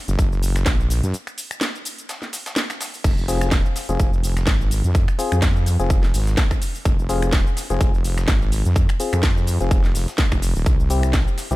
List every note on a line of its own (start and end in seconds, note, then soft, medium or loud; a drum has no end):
0.08 0.17 F#1 medium
0.08 closed hi-hat medium
0.08 cabasa soft
0.19 0.65 F#1 loud
0.19 kick loud
0.19 closed hi-hat medium
0.19 cabasa soft
0.33 cabasa soft
0.43 closed hi-hat medium
0.43 open hi-hat loud
0.43 cabasa medium
0.56 finger snap medium
0.56 snare soft
0.56 closed hi-hat medium
0.56 cabasa soft
0.66 1.01 A#1 loud
0.66 kick loud
0.66 snare loud
0.66 closed hi-hat medium
0.66 cabasa medium
0.80 cabasa soft
0.90 closed hi-hat medium
0.90 open hi-hat loud
0.90 cabasa medium
1.03 1.14 F#2 loud
1.03 closed hi-hat medium
1.03 cabasa soft
1.14 closed hi-hat medium
1.14 cabasa soft
1.27 finger snap medium
1.27 cabasa soft
1.38 closed hi-hat medium
1.38 open hi-hat loud
1.38 cabasa medium
1.51 finger snap medium
1.51 closed hi-hat medium
1.51 cabasa soft
1.61 snare loud
1.61 closed hi-hat medium
1.61 cabasa soft
1.75 cabasa soft
1.85 closed hi-hat medium
1.85 open hi-hat loud
1.85 cabasa medium
1.98 closed hi-hat medium
1.98 cabasa soft
2.09 snare loud
2.09 closed hi-hat medium
2.09 cabasa soft
2.22 snare soft
2.22 cabasa soft
2.33 snare medium
2.33 closed hi-hat medium
2.33 open hi-hat loud
2.33 cabasa medium
2.46 snare loud
2.46 closed hi-hat medium
2.46 cabasa soft
2.56 snare loud
2.56 closed hi-hat medium
2.56 cabasa soft
2.70 finger snap medium
2.70 snare medium
2.70 closed hi-hat medium
2.70 cabasa soft
2.81 snare loud
2.81 closed hi-hat medium
2.81 open hi-hat loud
2.81 cabasa medium
2.94 open hi-hat medium
2.94 cabasa soft
3.04 3.16 F1 medium
3.04 kick loud
3.04 closed hi-hat medium
3.04 crash medium
3.04 cabasa soft
3.18 3.63 F1 loud
3.18 cabasa soft
3.28 3.51 C4 loud
3.28 3.51 F4 medium
3.28 3.51 G#4 loud
3.28 closed hi-hat medium
3.28 open hi-hat loud
3.28 cabasa medium
3.41 finger snap medium
3.41 closed hi-hat medium
3.41 cabasa soft
3.51 kick loud
3.51 snare loud
3.51 closed hi-hat medium
3.51 cabasa soft
3.66 cabasa soft
3.76 snare medium
3.76 closed hi-hat medium
3.76 open hi-hat loud
3.76 cabasa medium
3.89 3.98 F1 medium
3.89 4.11 C4 medium
3.89 4.11 F4 medium
3.89 4.11 G#4 medium
3.89 closed hi-hat medium
3.89 cabasa soft
4.00 4.46 F1 loud
4.00 kick loud
4.00 closed hi-hat medium
4.00 cabasa soft
4.13 cabasa soft
4.23 closed hi-hat medium
4.23 open hi-hat loud
4.23 cabasa medium
4.37 finger snap medium
4.37 snare soft
4.37 closed hi-hat medium
4.37 cabasa soft
4.47 4.82 G#1 loud
4.47 kick loud
4.47 snare loud
4.47 closed hi-hat medium
4.47 cabasa soft
4.61 cabasa soft
4.71 closed hi-hat medium
4.71 open hi-hat loud
4.71 cabasa medium
4.84 5.06 F2 loud
4.84 closed hi-hat medium
4.84 cabasa soft
4.95 kick loud
4.95 closed hi-hat medium
4.95 cabasa soft
5.08 finger snap medium
5.08 cabasa soft
5.19 5.41 C4 loud
5.19 5.41 F4 medium
5.19 5.41 G#4 loud
5.19 closed hi-hat medium
5.19 open hi-hat loud
5.19 cabasa medium
5.32 5.77 F2 loud
5.32 finger snap medium
5.32 closed hi-hat medium
5.32 cabasa soft
5.42 kick loud
5.42 snare loud
5.42 closed hi-hat medium
5.42 cabasa soft
5.56 cabasa soft
5.66 closed hi-hat medium
5.66 open hi-hat loud
5.66 cabasa medium
5.80 6.12 F1 medium
5.80 6.02 C4 medium
5.80 6.02 F4 medium
5.80 6.02 G#4 medium
5.80 closed hi-hat medium
5.80 cabasa soft
5.90 kick loud
5.90 closed hi-hat medium
5.90 cabasa soft
6.03 snare soft
6.03 cabasa soft
6.14 6.36 G#1 loud
6.14 open hi-hat loud
6.14 open hi-hat medium
6.14 cabasa medium
6.27 snare soft
6.27 closed hi-hat medium
6.27 cabasa soft
6.37 kick loud
6.37 snare loud
6.37 closed hi-hat medium
6.37 cabasa soft
6.51 finger snap medium
6.51 kick medium
6.51 closed hi-hat soft
6.51 cabasa soft
6.62 closed hi-hat medium
6.62 open hi-hat loud
6.62 cabasa medium
6.75 open hi-hat medium
6.75 cabasa soft
6.85 6.97 F1 loud
6.85 kick loud
6.85 closed hi-hat medium
6.85 cabasa soft
6.99 7.44 F1 medium
6.99 cabasa soft
7.09 7.32 C4 loud
7.09 7.32 F4 medium
7.09 7.32 G#4 loud
7.09 closed hi-hat medium
7.09 open hi-hat loud
7.09 cabasa medium
7.22 finger snap medium
7.22 closed hi-hat soft
7.22 cabasa soft
7.33 kick loud
7.33 snare loud
7.33 closed hi-hat medium
7.33 cabasa soft
7.47 cabasa soft
7.57 snare medium
7.57 closed hi-hat medium
7.57 open hi-hat loud
7.57 cabasa medium
7.70 7.79 F1 medium
7.70 7.92 C4 medium
7.70 7.92 F4 medium
7.70 7.92 G#4 medium
7.70 closed hi-hat medium
7.70 cabasa soft
7.81 8.27 F1 loud
7.81 kick loud
7.81 closed hi-hat medium
7.81 cabasa soft
7.94 cabasa soft
8.04 closed hi-hat medium
8.04 open hi-hat loud
8.04 cabasa medium
8.18 finger snap medium
8.18 snare soft
8.18 closed hi-hat medium
8.18 cabasa soft
8.28 8.63 G#1 loud
8.28 kick loud
8.28 snare loud
8.28 closed hi-hat medium
8.28 cabasa soft
8.42 cabasa soft
8.52 closed hi-hat medium
8.52 open hi-hat loud
8.52 cabasa medium
8.65 8.87 F2 loud
8.65 closed hi-hat medium
8.65 cabasa soft
8.76 kick loud
8.76 closed hi-hat medium
8.76 cabasa soft
8.89 finger snap medium
8.89 cabasa soft
9.00 9.22 C4 medium
9.00 9.22 F4 medium
9.00 9.22 G#4 loud
9.00 closed hi-hat medium
9.00 open hi-hat loud
9.00 cabasa medium
9.13 9.58 F2 loud
9.13 finger snap medium
9.13 closed hi-hat soft
9.13 cabasa soft
9.23 kick loud
9.23 snare loud
9.23 closed hi-hat medium
9.23 cabasa soft
9.37 cabasa soft
9.47 closed hi-hat medium
9.47 open hi-hat loud
9.47 cabasa medium
9.60 9.93 F1 loud
9.60 9.83 C4 medium
9.60 9.83 F4 medium
9.60 9.83 G#4 medium
9.60 closed hi-hat medium
9.60 cabasa soft
9.71 kick loud
9.71 closed hi-hat medium
9.71 cabasa soft
9.84 snare soft
9.84 cabasa soft
9.95 10.06 F1 loud
9.95 open hi-hat loud
9.95 open hi-hat medium
9.95 cabasa medium
10.08 snare soft
10.08 closed hi-hat medium
10.08 cabasa soft
10.18 kick loud
10.18 snare loud
10.18 closed hi-hat medium
10.18 cabasa soft
10.32 10.54 F1 loud
10.32 finger snap medium
10.32 kick medium
10.32 closed hi-hat soft
10.32 cabasa soft
10.42 closed hi-hat medium
10.42 open hi-hat loud
10.42 cabasa medium
10.56 10.65 D#1 loud
10.56 open hi-hat medium
10.56 cabasa soft
10.66 10.77 C2 loud
10.66 kick loud
10.66 closed hi-hat medium
10.66 cabasa soft
10.80 11.25 C2 loud
10.80 cabasa soft
10.90 11.12 C4 loud
10.90 11.12 E4 medium
10.90 11.12 G4 loud
10.90 closed hi-hat medium
10.90 open hi-hat loud
10.90 cabasa medium
11.03 finger snap medium
11.03 closed hi-hat medium
11.03 cabasa soft
11.13 kick loud
11.13 snare loud
11.13 closed hi-hat medium
11.13 cabasa soft
11.28 cabasa soft
11.38 snare medium
11.38 closed hi-hat medium
11.38 open hi-hat loud
11.38 cabasa medium
11.51 11.56 C2 medium
11.51 11.56 C4 medium
11.51 11.56 E4 medium
11.51 11.56 G4 medium
11.51 closed hi-hat medium
11.51 cabasa soft